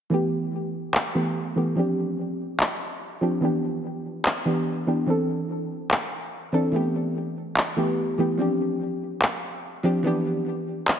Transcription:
0.10 E3 A3 B3 G4
0.94 clap
1.15 E3 A3 B3 G4
1.56 E3 A3 B3 G4
1.75 F3 C4 D4 G4
2.60 clap
3.21 F3 C4 D4 G4
3.41 E3 B3 D4
3.45 G4
4.26 clap
4.45 E3 B3 D4 G4
4.87 E3 B3 D4 G4
5.06 E3 C4 D4 A4
5.91 clap
6.52 E3 C4 D4 A4
6.72 E3 A3 B3
6.76 G4
7.57 clap
7.76 E3 A3 B3 G4
8.18 E3 A3 B3 G4
8.37 F3 C4 D4
8.41 G4
9.22 clap
9.83 F3 C4 D4 G4
10.03 E3 B3 D4 G4
10.88 clap

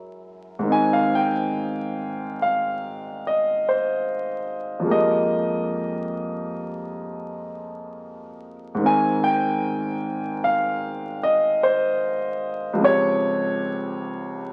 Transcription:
Already playing: F#2 F#3 G#3 C#4 E4
0.59 G#2 D#3
0.65 G#3 C4
0.70 D#4 G#5
0.93 F5
1.15 G5
2.42 F5
3.27 D#5
3.69 C5
4.79 F2 F3
4.85 G#3 A#3
4.90 G4 D#5
8.75 G#2 D#3
8.80 G#3 C4
8.85 A#4 G#5
9.24 G5
10.44 F5
11.23 D#5
11.63 C5
12.73 C#2 F3
12.78 G#3 C4
12.84 G4 C#5

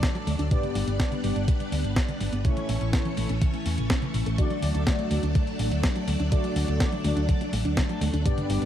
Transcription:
Already playing: F#3 A3 D4 A4 D5
0.03 D3, kick, snare, closed hi-hat
0.15 F#3, closed hi-hat
0.27 D2 A3, open hi-hat
0.39 D2 D4, closed hi-hat
0.51 G2 B2 G3 B3 D4 G4 B4 D5, kick, closed hi-hat
0.63 D3, closed hi-hat
0.75 G1 G3, open hi-hat
0.87 G1 B3, closed hi-hat
1.00 B2, kick, snare, closed hi-hat
1.12 D3, closed hi-hat
1.24 G1 G2 G3 B3 D4 G4 D5, open hi-hat
1.36 G1 B3, closed hi-hat
1.48 B2, kick, closed hi-hat
1.60 D3, closed hi-hat
1.72 D2 G3, open hi-hat
1.84 G1 B3, closed hi-hat
1.96 B2, kick, snare, closed hi-hat
2.08 D3, closed hi-hat
2.21 G1 G3, open hi-hat
2.33 G1 B3, closed hi-hat
2.45 A2 C#3 E3 A3 C#4 E4 A4 C#5, kick, closed hi-hat
2.57 E3, closed hi-hat
2.69 A1 A3, open hi-hat
2.81 A1 C#4, closed hi-hat
2.93 C#3, kick, snare, closed hi-hat
3.05 E3, closed hi-hat
3.17 A1 A2 A3 C#4 E4 C#5, open hi-hat
3.29 A1 C#4, closed hi-hat
3.41 C#3, kick, closed hi-hat
3.54 E3, closed hi-hat
3.66 E2 A3, open hi-hat
3.78 A1 C#3, closed hi-hat
3.90 C#4, kick, snare, closed hi-hat
4.02 C#3, closed hi-hat
4.14 A1 C#3, open hi-hat
4.26 A1 A4, closed hi-hat
4.38 D3 F#3 A3 D4 F#4 D5, kick, closed hi-hat
4.50 F#3, closed hi-hat
4.62 D2 A3, open hi-hat
4.75 D2 D4, closed hi-hat
4.87 D3, kick, snare, closed hi-hat
4.99 F#3, closed hi-hat
5.11 D2 D3 A3 D4 F#4 D5, open hi-hat
5.23 D2 D4, closed hi-hat
5.35 D3, kick, closed hi-hat
5.47 F#3, closed hi-hat
5.59 A1 A3, open hi-hat
5.71 D2 D4, closed hi-hat
5.84 D3, kick, snare, closed hi-hat
5.96 F#3, closed hi-hat
6.08 D2 A3, open hi-hat
6.20 D2 D4, closed hi-hat
6.32 D3 A3 D4 F#4 D5, kick, closed hi-hat
6.44 F#3, closed hi-hat
6.56 D2 A3, open hi-hat
6.68 D2 D4, closed hi-hat
6.80 D3, kick, snare, closed hi-hat
6.92 F#3, closed hi-hat
7.04 D2 D3 A3 D4 F#4 D5, open hi-hat
7.17 D2 D4, closed hi-hat
7.29 D3, kick, closed hi-hat
7.41 F#3, closed hi-hat
7.53 A1 A3, open hi-hat
7.65 D2 D4, closed hi-hat
7.77 D3, kick, snare, closed hi-hat
7.89 F#3, closed hi-hat
8.01 D2 A3, open hi-hat
8.13 D2 D4, closed hi-hat
8.25 G2 B2 G3 B3 D4 G4 B4 D5, kick, closed hi-hat
8.38 D3, closed hi-hat
8.50 G1 G3, open hi-hat
8.62 G1 B3, closed hi-hat

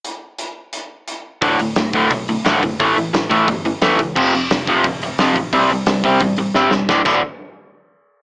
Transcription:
0.05 closed hi-hat
0.38 closed hi-hat
0.73 closed hi-hat
1.08 closed hi-hat
1.42 D1 D2 A2 D3, kick, open hi-hat
1.59 D1 D2 A2, open hi-hat
1.76 D1 D2 A2, snare, open hi-hat
1.93 D1 D2 A2 D3, kick, open hi-hat
2.10 B1 D2 A2, kick, open hi-hat
2.28 D2 A2, open hi-hat
2.45 A1 D2 A2 D3, snare, open hi-hat
2.63 F#1 D2 A2, kick, open hi-hat
2.80 A1 A2 E3 A3, kick, open hi-hat
2.96 A1 A2 E3, open hi-hat
3.13 A1 A2 E3, snare, open hi-hat
3.29 A1 A2 E3 A3, kick, open hi-hat
3.48 G1 A2 E3, kick, open hi-hat
3.65 A2 E3, open hi-hat
3.82 E2 A2 E3 A3, snare, open hi-hat
3.99 C#2 A2 E3, kick, open hi-hat
4.16 F1 F2 C3 F3, kick, crash
4.34 F1 F2 C3, open hi-hat
4.51 F1 F2 C3, snare, open hi-hat
4.67 F1 F2 C3 F3, kick, open hi-hat
4.84 D1 F2 C3, kick, open hi-hat
5.02 F2 C3, open hi-hat
5.18 C2 F2 C3 F3, snare, open hi-hat
5.36 A1 F2 C3, kick, open hi-hat
5.53 C2 C3 G3 C4, kick, open hi-hat
5.70 C2 C3 G3, open hi-hat
5.86 C2 C3 G3, snare, open hi-hat
6.04 C2 C3 G3 C4, kick, open hi-hat
6.20 A1 C3 G3, kick, open hi-hat
6.37 C3 G3, open hi-hat
6.54 G1 C3 G3 C4, snare
6.71 E1 C3 G3, snare
6.89 D1 D2 A2 D3, kick, snare
7.05 D1 D2 A2 D3, kick, crash

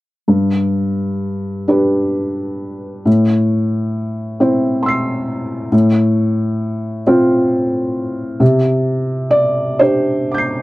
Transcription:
0.28 G2
1.68 D4 G4 B4
3.05 A2
4.40 C4 E4 C5
4.83 C6 E6
4.88 C7
5.72 A2
7.07 C4 F4 C5
8.40 C3
9.31 D5
9.79 D4 G4 C5
10.32 D6 G6
10.38 C7

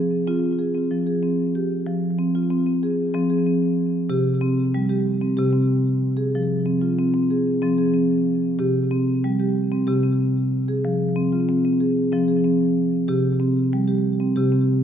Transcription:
Already playing: F3 G#4
0.27 C4 F4
0.59 G#4
0.75 C4
0.91 F3
1.07 G#4
1.23 C4
1.55 G4
1.86 F3
2.19 C4
2.35 F4
2.50 C4
2.66 C4
2.83 G#4
3.14 F3 C4
3.30 G#4
3.46 C4
4.09 C3 G4
4.41 C4
4.74 G3
4.89 G4
5.22 C4
5.37 C3 G4
5.53 C4
6.17 G#4
6.35 F3
6.66 C4
6.82 F4
6.99 C4
7.14 C4
7.30 G#4
7.62 F3 C4
7.78 G#4
7.94 C4
8.59 C3 G4
8.91 C4
9.24 G3
9.40 G4
9.72 C4
9.87 C3 G4
10.03 C4
10.68 G#4
10.85 F3
11.16 C4
11.32 F4
11.49 C4
11.65 C4
11.80 G#4
12.12 F3 C4
12.28 G#4
12.44 C4
13.08 C3 G4
13.40 C4
13.73 G3
13.88 G4
14.20 C4
14.36 C3 G4
14.52 C4

